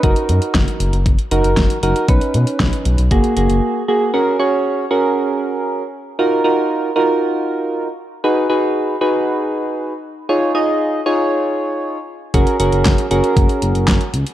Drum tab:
HH |xxxxxxxxxxxxxxxx|xxxxxxxxxxxx----|----------------|----------------|
CP |----------------|----------------|----------------|----------------|
SD |----o-------o---|----o-----------|----------------|----------------|
BD |o---o---o---o---|o---o---o-------|----------------|----------------|

HH |----------------|----------------|xxxxxxxxxxxxxxxx|
CP |----------------|----------------|----x-------x---|
SD |----------------|----------------|----o-------o---|
BD |----------------|----------------|o---o---o---o---|